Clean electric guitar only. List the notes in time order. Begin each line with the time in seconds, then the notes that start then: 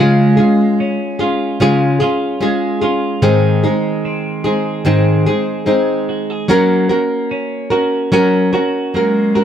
0.00 G#3
0.39 G#3
0.80 C#4
1.20 F4
1.61 C#4
2.01 F4
2.42 G#3
2.82 F4
3.23 D#3
3.64 G#3
4.05 C4
4.46 G#4
4.86 C4
5.28 G#4
5.68 G#3
6.09 F#4
6.30 G#4
6.50 A#3
6.91 A#3
7.31 C#4
7.72 F#4
8.14 C#4
8.54 F#4
8.95 A#3
9.35 F#4